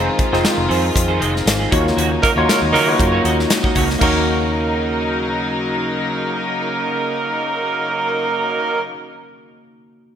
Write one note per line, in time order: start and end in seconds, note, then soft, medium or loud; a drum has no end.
0.00 1.70 D#3 medium
0.00 1.68 G#3 medium
0.00 0.12 C4 medium
0.00 0.19 C4 medium
0.00 0.19 D#4 medium
0.00 0.19 F4 medium
0.00 1.70 F4 medium
0.00 0.19 G#4 medium
0.00 0.20 C5 medium
0.00 1.74 A#5 medium
0.07 muted clean electric guitar stroke soft
0.18 muted clean electric guitar stroke soft
0.18 kick loud
0.18 closed hi-hat medium
0.32 0.42 F1 loud
0.32 1.03 C4 medium
0.32 0.42 C4 medium
0.32 1.03 D#4 medium
0.32 0.43 D#4 medium
0.32 1.03 F4 medium
0.32 0.43 G#4 medium
0.32 1.03 G#4 medium
0.32 0.43 C5 medium
0.32 1.03 C5 loud
0.32 snare soft
0.44 muted clean electric guitar stroke soft
0.44 snare loud
0.44 closed hi-hat medium
0.57 0.67 F1 loud
0.57 muted clean electric guitar stroke soft
0.68 0.89 F2 loud
0.68 0.87 C4 medium
0.68 0.82 D#4 medium
0.68 0.82 G#4 medium
0.68 0.81 C5 medium
0.68 open hi-hat medium
0.82 muted clean electric guitar stroke soft
0.94 1.22 F2 medium
0.94 muted clean electric guitar stroke soft
0.94 kick medium
0.94 closed hi-hat loud
1.08 1.18 C4 medium
1.08 1.18 D#4 medium
1.08 1.19 G#4 medium
1.08 1.21 C5 medium
1.19 1.40 F1 medium
1.19 1.35 C4 medium
1.19 1.34 D#4 medium
1.19 1.33 G#4 medium
1.19 1.33 D#5 medium
1.19 closed hi-hat medium
1.34 muted clean electric guitar stroke medium
1.34 snare soft
1.45 1.65 G#1 medium
1.45 muted clean electric guitar stroke medium
1.45 snare loud
1.45 closed hi-hat loud
1.59 1.70 C4 soft
1.59 1.70 D#4 medium
1.59 1.71 G#4 medium
1.59 1.71 D#5 medium
1.70 1.92 D#2 loud
1.70 3.99 C#3 medium
1.70 3.99 F#3 medium
1.70 1.89 A#3 medium
1.70 2.23 A#3 medium
1.70 1.85 D#4 loud
1.70 3.98 D#4 medium
1.70 2.23 D#4 medium
1.70 2.23 F4 medium
1.70 1.85 F#4 loud
1.70 2.23 F#4 medium
1.70 1.84 C#5 loud
1.70 2.23 C#5 loud
1.70 kick loud
1.70 closed hi-hat medium
1.85 muted clean electric guitar stroke soft
1.85 snare soft
1.96 2.16 D#2 medium
1.96 2.15 A#3 medium
1.96 2.11 D#4 medium
1.96 2.10 F#4 loud
1.96 2.09 C#5 loud
1.96 closed hi-hat medium
2.11 muted clean electric guitar stroke soft
2.22 2.31 F#3 medium
2.22 2.31 A#3 loud
2.22 2.32 D#4 medium
2.22 2.31 A#4 loud
2.22 muted clean electric guitar stroke soft
2.22 kick medium
2.22 closed hi-hat medium
2.36 2.45 D#2 loud
2.36 2.71 A#3 medium
2.36 2.46 A#3 medium
2.36 2.71 D#4 medium
2.36 2.47 D#4 medium
2.36 2.71 F4 medium
2.36 2.47 F#4 medium
2.36 2.71 F#4 medium
2.36 2.47 C#5 medium
2.36 2.72 C#5 loud
2.48 2.60 F#3 medium
2.48 2.60 A#3 medium
2.48 2.60 D#4 medium
2.48 2.60 A#4 loud
2.48 muted clean electric guitar stroke soft
2.48 snare loud
2.48 closed hi-hat loud
2.61 2.75 D#2 loud
2.61 muted clean electric guitar stroke soft
2.72 2.93 D#3 medium
2.72 3.06 F#3 loud
2.72 2.91 A#3 loud
2.72 3.06 A#3 loud
2.72 3.06 D#4 loud
2.72 2.87 D#4 medium
2.72 2.86 F#4 loud
2.72 3.06 A#4 loud
2.72 2.85 C#5 medium
2.72 open hi-hat medium
2.86 3.57 A#3 medium
2.86 3.57 D#4 medium
2.86 3.57 F4 medium
2.86 3.57 F#4 medium
2.86 3.58 C#5 loud
2.86 muted clean electric guitar stroke soft
2.98 3.18 F#2 medium
2.98 muted clean electric guitar stroke soft
2.98 kick medium
2.98 closed hi-hat loud
3.12 3.22 A#3 medium
3.12 3.23 D#4 medium
3.12 3.24 F#4 medium
3.12 3.25 C#5 medium
3.24 3.44 D#2 medium
3.24 3.38 A#3 medium
3.24 3.39 D#4 medium
3.24 3.38 F#4 medium
3.24 3.38 D#5 medium
3.24 closed hi-hat medium
3.39 muted clean electric guitar stroke soft
3.39 snare soft
3.50 muted clean electric guitar stroke medium
3.50 snare loud
3.50 closed hi-hat loud
3.63 3.74 A#3 soft
3.63 3.74 D#4 medium
3.63 3.75 F#4 medium
3.63 3.76 D#5 medium
3.63 kick medium
3.75 3.95 C#2 medium
3.75 3.93 A#3 medium
3.75 3.88 D#4 loud
3.75 3.88 F#4 loud
3.75 3.87 C#5 loud
3.75 kick medium
3.75 open hi-hat medium
3.88 muted clean electric guitar stroke soft
3.88 snare soft
3.99 8.91 D#2 medium
3.99 8.83 C#3 medium
3.99 8.83 F#3 medium
3.99 8.93 A#3 medium
3.99 8.89 A#3 medium
3.99 8.83 A#3 medium
3.99 8.90 D#4 medium
3.99 8.95 D#4 medium
3.99 8.83 D#4 medium
3.99 8.83 D#4 loud
3.99 8.96 F#4 medium
3.99 8.83 A#4 medium
3.99 8.91 F5 medium
3.99 kick loud
3.99 crash medium
4.03 8.93 F#4 medium
4.03 8.94 C#5 medium
4.03 8.98 C#5 loud